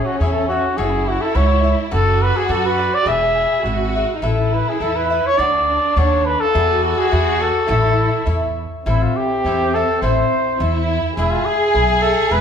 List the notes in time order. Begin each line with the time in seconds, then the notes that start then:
Already playing: C#4 E4 A4 C#5 E5
0.05 F#4
0.19 E2 E4 G#4 A4 C#5
0.23 E5
0.32 A4
0.48 F#4 A4 C#5 E5
0.77 F#1 E4 F#4 G#4 A4 C#5 E5
1.08 F#4
1.21 A4
1.35 C#2 F#4 A4 C#5 E5
1.64 A4 C#5 E5
1.91 F#1 F#4 A4 B4 D5
2.22 B4
2.37 G#4
2.48 F#2 F#4 A4 B4 D5
2.66 B4
2.78 A4 B4 D5
2.94 D5
3.05 E1 E4 G#4 B4 E5
3.63 G#1 E4 F#4 G#4 B4 E5
3.95 G#4 B4 E5
4.15 D#4
4.22 A1 E4 A4 B4 E5
4.54 B4
4.69 G#4
4.80 E2 E4 A4 B4 E5
4.96 B4
5.10 A4 B4 E5
5.26 C#5
5.38 D2 D4 A4 D5 F#5
5.96 D#2 D4 A4 C#5 D5 F#5
6.26 B4
6.40 A4
6.47 F4
6.54 E2 E4 F#4 G#4 B4 D5
6.85 A4
6.99 G#4
7.11 E2 E4 G#4 B4 D5
7.40 G#4 A4 B4 D5
7.67 A1 E4 A4 C#5 E5
8.26 E2 E4 A4 C#5 E5
8.85 A1 C4 E4 A4 C5 E5
9.02 F4
9.16 G4
9.45 E2 E4 A4 C5 E5
9.74 A4 C5 E5
10.02 A1 E4 A4 C5 E5
10.58 E2 E4 A4 C5 E5
11.16 E1 E4 G#4 B4 E5
11.30 F4
11.45 G#4
11.73 B1 E4 G#4 B4 E5
12.02 G#4 A4 B4 E5
12.30 E1 E4 G#4 B4 E5